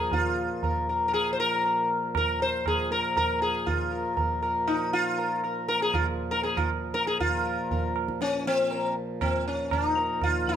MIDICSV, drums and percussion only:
0, 0, Header, 1, 2, 480
1, 0, Start_track
1, 0, Tempo, 505051
1, 107, Time_signature, 7, 2, 24, 8
1, 10036, End_track
2, 0, Start_track
2, 0, Title_t, "Tabla"
2, 110, Note_on_c, 9, 63, 97
2, 110, Note_on_c, 9, 64, 90
2, 205, Note_off_c, 9, 63, 0
2, 205, Note_off_c, 9, 64, 0
2, 597, Note_on_c, 9, 63, 85
2, 597, Note_on_c, 9, 64, 76
2, 692, Note_off_c, 9, 63, 0
2, 692, Note_off_c, 9, 64, 0
2, 1078, Note_on_c, 9, 60, 68
2, 1173, Note_off_c, 9, 60, 0
2, 1556, Note_on_c, 9, 63, 75
2, 1651, Note_off_c, 9, 63, 0
2, 2041, Note_on_c, 9, 60, 87
2, 2041, Note_on_c, 9, 64, 75
2, 2136, Note_off_c, 9, 60, 0
2, 2136, Note_off_c, 9, 64, 0
2, 2282, Note_on_c, 9, 62, 61
2, 2377, Note_off_c, 9, 62, 0
2, 2526, Note_on_c, 9, 60, 71
2, 2526, Note_on_c, 9, 64, 66
2, 2621, Note_off_c, 9, 60, 0
2, 2621, Note_off_c, 9, 64, 0
2, 2765, Note_on_c, 9, 62, 65
2, 2860, Note_off_c, 9, 62, 0
2, 3010, Note_on_c, 9, 60, 76
2, 3010, Note_on_c, 9, 64, 61
2, 3105, Note_off_c, 9, 60, 0
2, 3105, Note_off_c, 9, 64, 0
2, 3248, Note_on_c, 9, 62, 63
2, 3343, Note_off_c, 9, 62, 0
2, 3488, Note_on_c, 9, 63, 100
2, 3488, Note_on_c, 9, 64, 78
2, 3583, Note_off_c, 9, 63, 0
2, 3583, Note_off_c, 9, 64, 0
2, 3964, Note_on_c, 9, 63, 81
2, 3964, Note_on_c, 9, 64, 73
2, 4059, Note_off_c, 9, 63, 0
2, 4059, Note_off_c, 9, 64, 0
2, 4207, Note_on_c, 9, 60, 60
2, 4302, Note_off_c, 9, 60, 0
2, 4444, Note_on_c, 9, 60, 71
2, 4539, Note_off_c, 9, 60, 0
2, 4925, Note_on_c, 9, 63, 70
2, 5020, Note_off_c, 9, 63, 0
2, 5167, Note_on_c, 9, 60, 57
2, 5262, Note_off_c, 9, 60, 0
2, 5405, Note_on_c, 9, 62, 75
2, 5501, Note_off_c, 9, 62, 0
2, 5524, Note_on_c, 9, 62, 75
2, 5619, Note_off_c, 9, 62, 0
2, 5643, Note_on_c, 9, 60, 84
2, 5643, Note_on_c, 9, 64, 81
2, 5738, Note_off_c, 9, 60, 0
2, 5738, Note_off_c, 9, 64, 0
2, 6008, Note_on_c, 9, 62, 69
2, 6103, Note_off_c, 9, 62, 0
2, 6127, Note_on_c, 9, 62, 77
2, 6222, Note_off_c, 9, 62, 0
2, 6246, Note_on_c, 9, 60, 96
2, 6246, Note_on_c, 9, 64, 85
2, 6341, Note_off_c, 9, 60, 0
2, 6341, Note_off_c, 9, 64, 0
2, 6603, Note_on_c, 9, 62, 80
2, 6698, Note_off_c, 9, 62, 0
2, 6723, Note_on_c, 9, 62, 73
2, 6818, Note_off_c, 9, 62, 0
2, 6846, Note_on_c, 9, 63, 89
2, 6846, Note_on_c, 9, 64, 77
2, 6942, Note_off_c, 9, 63, 0
2, 6942, Note_off_c, 9, 64, 0
2, 7327, Note_on_c, 9, 63, 84
2, 7327, Note_on_c, 9, 64, 82
2, 7422, Note_off_c, 9, 63, 0
2, 7422, Note_off_c, 9, 64, 0
2, 7562, Note_on_c, 9, 60, 70
2, 7657, Note_off_c, 9, 60, 0
2, 7684, Note_on_c, 9, 37, 57
2, 7779, Note_off_c, 9, 37, 0
2, 7801, Note_on_c, 9, 62, 79
2, 7896, Note_off_c, 9, 62, 0
2, 8039, Note_on_c, 9, 62, 53
2, 8134, Note_off_c, 9, 62, 0
2, 8276, Note_on_c, 9, 63, 79
2, 8371, Note_off_c, 9, 63, 0
2, 8755, Note_on_c, 9, 60, 92
2, 8755, Note_on_c, 9, 64, 76
2, 8850, Note_off_c, 9, 60, 0
2, 8850, Note_off_c, 9, 64, 0
2, 9232, Note_on_c, 9, 60, 83
2, 9232, Note_on_c, 9, 64, 72
2, 9327, Note_off_c, 9, 60, 0
2, 9327, Note_off_c, 9, 64, 0
2, 9471, Note_on_c, 9, 62, 64
2, 9566, Note_off_c, 9, 62, 0
2, 9709, Note_on_c, 9, 60, 72
2, 9709, Note_on_c, 9, 64, 77
2, 9804, Note_off_c, 9, 60, 0
2, 9804, Note_off_c, 9, 64, 0
2, 9950, Note_on_c, 9, 64, 58
2, 10036, Note_off_c, 9, 64, 0
2, 10036, End_track
0, 0, End_of_file